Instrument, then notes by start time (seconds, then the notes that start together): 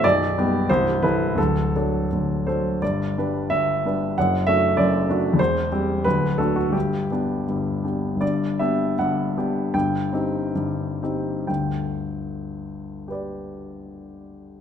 grand piano
0.04 B0 B1 D5
0.38 G3 B3 G4
0.69 C1 C2 C5
1.03 E3 E4 A4 B4
1.35 D2 A4
1.40 D1
1.76 F#3 D4 A4
2.11 D1 D2
2.47 F#3 D4 A4 C5
2.82 G1 G2 D5
3.18 G3 D4 B4
3.50 G1 G2 E5
3.85 G3 D4 B4
4.18 F#1 F#2 F#5
4.47 A3 D4 F#4 E5
4.77 F#1 F#2 D5
5.09 A3 D4 F#4
5.33 E2
5.39 E1 C5
5.72 G3 C4 G4
6.04 D1 D2 B4
6.38 A3 D4 F#4 A4
6.56 F#4
6.70 G1 G4
6.74 G2
7.11 B3 D4 G4
7.48 G1 G2
7.84 B3 D4 G4
8.16 G1
8.21 G2 D5
8.59 B3 D4 G4 E5
8.99 G1 G2 F#5
9.37 B3 D4 G4
9.74 G1 G2 G5
10.13 C4 D#4 G4
10.55 G1 G2
11.03 C4 D#4 G4
11.47 G1 D2 G5
13.08 G4 B4
13.12 D5